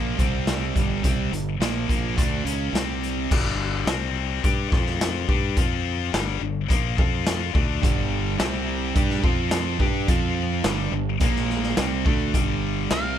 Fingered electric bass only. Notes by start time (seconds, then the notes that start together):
Already playing: A#1
0.19 C2
0.76 G1
1.04 C2
1.31 G1
1.60 A#1
1.89 A#1
2.18 D2
2.45 C#2
2.73 C2
3.31 G1
3.86 C2
4.44 G2
4.72 F2
5.29 G2
5.57 F2
6.14 G1
6.41 G1
6.70 A#1
6.98 F2
7.55 D2
7.83 G1
8.40 C2
8.96 G2
9.24 F2
9.80 G2
10.08 F2
10.64 G1
10.92 G1
11.21 A#1
11.78 C2
12.06 D2
12.34 G1
12.91 C2